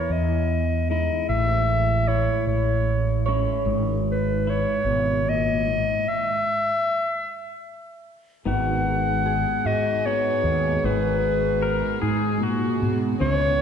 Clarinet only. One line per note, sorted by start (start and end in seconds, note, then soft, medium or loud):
0.00 0.13 C#5 medium
0.12 0.89 D#5 medium
0.90 1.26 D#5 medium
1.29 2.09 E5 loud
2.08 2.47 C#5 medium
2.48 3.32 C#5 medium
4.11 4.51 B4 medium
4.50 5.30 C#5 medium
5.29 6.10 D#5 loud
6.08 7.67 E5 loud
8.47 9.68 F#5 loud
9.66 10.07 D#5 medium
10.06 10.87 C#5 loud
10.85 12.42 B4 medium
13.20 13.62 C#5 loud